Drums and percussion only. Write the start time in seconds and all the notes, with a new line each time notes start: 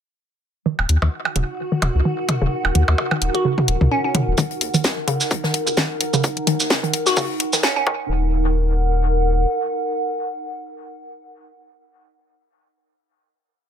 0.79 percussion blips
0.89 closed hi-hat
1.02 percussion blips
1.25 percussion blips
1.36 closed hi-hat
1.82 closed hi-hat, mid tom, percussion blips
2.29 closed hi-hat, mid tom, percussion blips
2.65 percussion blips
2.75 closed hi-hat
2.88 percussion blips
2.98 percussion blips
3.11 percussion blips
3.22 closed hi-hat
3.35 closed hi-hat
3.58 mid tom
3.68 closed hi-hat
3.81 mid tom
4.15 closed hi-hat, mid tom
4.37 kick, closed hi-hat, shaker
4.51 closed hi-hat
4.61 closed hi-hat
4.74 closed hi-hat, shaker
4.84 kick, snare, closed hi-hat, shaker
5.07 closed hi-hat
5.20 snare, shaker
5.31 kick, closed hi-hat, shaker
5.44 snare
5.54 closed hi-hat
5.67 shaker
5.77 kick, snare, closed hi-hat, shaker
6.01 closed hi-hat
6.14 shaker
6.24 kick, closed hi-hat, shaker
6.37 closed hi-hat
6.47 closed hi-hat
6.60 snare, shaker
6.70 kick, snare, closed hi-hat, shaker
6.84 closed hi-hat
6.94 closed hi-hat
7.06 snare, shaker
7.17 kick, open hi-hat, shaker
7.40 closed hi-hat
7.53 snare, shaker
7.63 kick, snare, closed hi-hat, shaker
7.87 kick